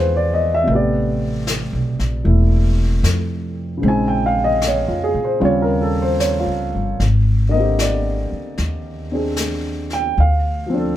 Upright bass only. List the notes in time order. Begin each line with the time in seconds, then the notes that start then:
Already playing: E2
0.67 A1
1.73 B1
1.99 A#1
2.25 E1
3.03 F2
3.83 A#1
4.88 F2
5.15 A#2
5.41 D#2
6.46 C#2
6.75 G1
7.00 G#1
8.32 muted upright bass stroke
8.58 D#2
10.18 D2